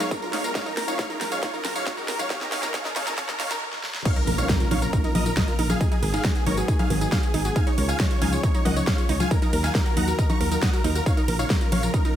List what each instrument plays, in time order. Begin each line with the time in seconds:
Already playing: analog synth pad B2 F#3 G#3 D#4 G#4, riser
0.00 synth arpeggio sound D#4, supersaw synth C#5 F5, snare, closed hi-hat, tambourine
0.11 synth arpeggio sound D#4, supersaw synth A#4, kick, closed hi-hat, tambourine
0.22 synth arpeggio sound F4, supersaw synth A#4, tambourine
0.33 synth arpeggio sound D#4, supersaw synth C#5 F5, snare, open hi-hat
0.44 synth arpeggio sound F4, supersaw synth A#4, closed hi-hat, tambourine
0.55 analog synth pad C#3 F3 F4, synth arpeggio sound D#4, supersaw synth C#5 F5, kick, snare, closed hi-hat, tambourine
0.66 synth arpeggio sound D#4, supersaw synth A#4, tambourine
0.77 supersaw synth A#4, synth arpeggio sound A#4, snare, open hi-hat
0.88 synth arpeggio sound D#4, supersaw synth C#5 F5, closed hi-hat, tambourine
0.99 synth arpeggio sound D#4, supersaw synth C#5 F5, kick, snare, closed hi-hat, tambourine
1.10 synth arpeggio sound D#4, supersaw synth A#4, tambourine
1.21 synth arpeggio sound A#4, supersaw synth A#4, snare, open hi-hat, high conga
1.32 synth arpeggio sound D#4, supersaw synth C#5 F5, closed hi-hat, tambourine
1.43 synth arpeggio sound D#4, supersaw synth C#5 F5, kick, snare, closed hi-hat, tambourine
1.53 synth arpeggio sound D#4, supersaw synth A#4, tambourine
1.64 synth arpeggio sound A#4, supersaw synth A#4, snare, open hi-hat, high conga
1.75 synth arpeggio sound D#4, supersaw synth C#5 F5, closed hi-hat, tambourine
1.86 synth arpeggio sound D#4, supersaw synth C#5 F5, kick, snare, closed hi-hat, tambourine
1.97 synth arpeggio sound D#4, supersaw synth A#4, tambourine
2.08 supersaw synth A#4, synth arpeggio sound A#4, snare, open hi-hat
2.19 synth arpeggio sound D#4, supersaw synth C#5 F5, closed hi-hat, tambourine, high conga
2.30 analog synth pad D#3 F#3 A#3 A#4, synth arpeggio sound D#4, supersaw synth C#5 F5, kick, snare, closed hi-hat, tambourine
2.41 synth arpeggio sound D#4, supersaw synth A#4, snare, tambourine
2.52 synth arpeggio sound D#4, supersaw synth C#5 F5, snare, open hi-hat
2.63 synth arpeggio sound D#4, supersaw synth A#4, snare, closed hi-hat, tambourine
2.74 synth arpeggio sound D#4, supersaw synth C#5 F5, kick, snare, closed hi-hat, tambourine
2.85 synth arpeggio sound D#4, supersaw synth A#4, snare, tambourine
2.96 synth arpeggio sound D#4, supersaw synth C#5 F5, snare, open hi-hat, high conga
3.07 synth arpeggio sound D#4, supersaw synth A#4, snare, closed hi-hat, tambourine
3.17 synth arpeggio sound D#4, supersaw synth C#5 F5, kick, snare, closed hi-hat, tambourine
3.28 synth arpeggio sound D#4, supersaw synth A#4, snare, tambourine, high conga
3.39 synth arpeggio sound D#4, supersaw synth C#5 F5, snare, open hi-hat
3.51 synth arpeggio sound D#4, supersaw synth A#4, snare, closed hi-hat, tambourine
3.73 snare
3.83 snare
3.94 snare
4.05 analog synth pad C#3 F3 A#3 F4 A#4, synth arpeggio sound D#4, supersaw synth C#5 F5, kick, closed hi-hat, crash, tambourine, impact
4.16 synth arpeggio sound D#4, supersaw synth A#4, closed hi-hat, tambourine
4.27 fm bass A#1, supersaw synth A#4, synth arpeggio sound A#4, open hi-hat
4.38 synth arpeggio sound D#4, supersaw synth C#5 F5, closed hi-hat, tambourine
4.49 synth arpeggio sound D#4, supersaw synth A#4, kick, snare, closed hi-hat, tambourine
4.60 synth arpeggio sound F4, supersaw synth A#4, closed hi-hat, tambourine
4.71 fm bass A#1, synth arpeggio sound D#4, supersaw synth C#5 F5, open hi-hat, high conga
4.82 synth arpeggio sound F4, supersaw synth A#4, closed hi-hat, tambourine
4.93 synth arpeggio sound D#4, supersaw synth A#4, kick, closed hi-hat, tambourine
5.04 synth arpeggio sound D#4, supersaw synth A#4, closed hi-hat, tambourine
5.15 fm bass A#1, synth arpeggio sound A#4, supersaw synth A#4 D#5, open hi-hat, high conga
5.26 synth arpeggio sound D#4, supersaw synth A#4, closed hi-hat, tambourine
5.37 synth arpeggio sound D#4, supersaw synth A#4 D#5, kick, snare, closed hi-hat, tambourine
5.48 synth arpeggio sound F4, supersaw synth A#4, closed hi-hat, tambourine
5.59 fm bass A#1, synth arpeggio sound D#4, supersaw synth A#4, open hi-hat
5.70 synth arpeggio sound F4, supersaw synth G#4 F5, closed hi-hat, tambourine, high conga
5.81 analog synth pad D#3 F#3 G#3 B3 F#4, synth arpeggio sound D#4, supersaw synth G#4, kick, closed hi-hat, tambourine
5.92 synth arpeggio sound D#4, supersaw synth G#4, closed hi-hat, tambourine
6.03 fm bass G#1, supersaw synth G#4, synth arpeggio sound A#4, open hi-hat
6.14 synth arpeggio sound D#4, supersaw synth G#4 F5, snare, closed hi-hat, tambourine
6.24 synth arpeggio sound D#4, supersaw synth G#4, kick, snare, closed hi-hat, tambourine
6.35 synth arpeggio sound F#4, supersaw synth G#4, closed hi-hat, tambourine
6.46 fm bass G#1, synth arpeggio sound D#4, supersaw synth A#4 C#5, open hi-hat, high conga
6.57 synth arpeggio sound F#4, supersaw synth G#4, closed hi-hat, tambourine
6.68 synth arpeggio sound D#4, supersaw synth G#4, kick, closed hi-hat, tambourine
6.79 synth arpeggio sound D#4, supersaw synth G#4 F5, closed hi-hat, tambourine, high conga
6.90 fm bass G#1, supersaw synth G#4, synth arpeggio sound A#4, open hi-hat
7.01 synth arpeggio sound D#4, supersaw synth G#4, closed hi-hat, tambourine
7.12 synth arpeggio sound D#4, supersaw synth G#4 F5, kick, snare, closed hi-hat, tambourine
7.23 synth arpeggio sound F#4, supersaw synth G#4, closed hi-hat, tambourine
7.34 fm bass G#1, synth arpeggio sound D#4, supersaw synth G#4, open hi-hat
7.45 synth arpeggio sound F#4, supersaw synth G#4, closed hi-hat, tambourine
7.56 analog synth pad C#3 F3 F4 G#4, synth arpeggio sound D#4, supersaw synth F5 G#5, kick, closed hi-hat, tambourine
7.67 synth arpeggio sound D#4, supersaw synth C#5, closed hi-hat, tambourine
7.78 fm bass C#2, synth arpeggio sound A#4, supersaw synth C#5, open hi-hat
7.88 synth arpeggio sound D#4, supersaw synth F5 G#5, tambourine
7.99 synth arpeggio sound D#4, supersaw synth C#5, kick, snare, closed hi-hat, tambourine
8.10 synth arpeggio sound F4, supersaw synth C#5, closed hi-hat, tambourine
8.21 fm bass C#2, synth arpeggio sound D#4, supersaw synth F5 G#5, open hi-hat, high conga
8.32 synth arpeggio sound F4, supersaw synth C#5, closed hi-hat, tambourine
8.43 synth arpeggio sound D#4, supersaw synth C#5, kick, closed hi-hat, tambourine
8.54 synth arpeggio sound D#4, supersaw synth C#5, closed hi-hat, tambourine
8.65 fm bass C#2, synth arpeggio sound A#4, supersaw synth D#5 F#5, open hi-hat, high conga
8.76 synth arpeggio sound D#4, supersaw synth C#5, closed hi-hat, tambourine
8.87 synth arpeggio sound D#4, supersaw synth C#5 F5, kick, snare, closed hi-hat, tambourine
8.98 synth arpeggio sound F4, supersaw synth C#5, closed hi-hat, tambourine
9.09 fm bass C#2, synth arpeggio sound D#4, supersaw synth C#5, open hi-hat
9.20 synth arpeggio sound F4, supersaw synth F5 G#5, closed hi-hat, tambourine, high conga
9.31 analog synth pad D#3 F#3 A#3 F#4, synth arpeggio sound D#4, supersaw synth A#4, kick, closed hi-hat, tambourine
9.42 synth arpeggio sound D#4, supersaw synth A#4, closed hi-hat, tambourine
9.53 fm bass D#2, supersaw synth A#4, synth arpeggio sound A#4, open hi-hat
9.64 synth arpeggio sound D#4, supersaw synth F5 G#5, snare, closed hi-hat, tambourine
9.75 synth arpeggio sound D#4, supersaw synth A#4, kick, snare, closed hi-hat, tambourine
9.86 synth arpeggio sound F#4, supersaw synth A#4, closed hi-hat, tambourine
9.97 fm bass D#2, synth arpeggio sound D#4, supersaw synth F#5 A#5, open hi-hat, high conga
10.07 synth arpeggio sound F#4, supersaw synth A#4, tambourine
10.19 synth arpeggio sound D#4, supersaw synth A#4, kick, closed hi-hat, tambourine
10.29 synth arpeggio sound D#4, supersaw synth A#5 C#6, closed hi-hat, tambourine, high conga
10.40 fm bass D#2, supersaw synth A#4, synth arpeggio sound A#4, open hi-hat
10.52 synth arpeggio sound D#4, supersaw synth A#4, closed hi-hat, tambourine
10.62 synth arpeggio sound D#4, supersaw synth F#5 D#6, kick, snare, closed hi-hat, tambourine
10.73 synth arpeggio sound F#4, supersaw synth A#4, closed hi-hat, tambourine
10.84 fm bass D#2, synth arpeggio sound D#4, supersaw synth A#4, open hi-hat
10.95 synth arpeggio sound F#4, supersaw synth A#4, closed hi-hat, tambourine
11.06 analog synth pad C#3 F3 A#4, synth arpeggio sound D#4, supersaw synth C#5 F5, kick, closed hi-hat, tambourine
11.17 synth arpeggio sound D#4, supersaw synth A#4, closed hi-hat, tambourine
11.28 fm bass A#1, supersaw synth A#4, synth arpeggio sound A#4, open hi-hat, ride
11.39 synth arpeggio sound D#4, supersaw synth C#5 F5, closed hi-hat, tambourine
11.50 synth arpeggio sound D#4, supersaw synth A#4, kick, snare, closed hi-hat, tambourine
11.61 synth arpeggio sound F4, supersaw synth A#4, closed hi-hat, tambourine
11.72 fm bass A#1, synth arpeggio sound A#4, supersaw synth C#5 F5, open hi-hat, ride, high conga
11.83 synth arpeggio sound F4, supersaw synth A#4, closed hi-hat, tambourine
11.94 synth arpeggio sound D#4, supersaw synth A#4, kick, closed hi-hat, tambourine
12.05 synth arpeggio sound D#4, supersaw synth A#4, closed hi-hat, tambourine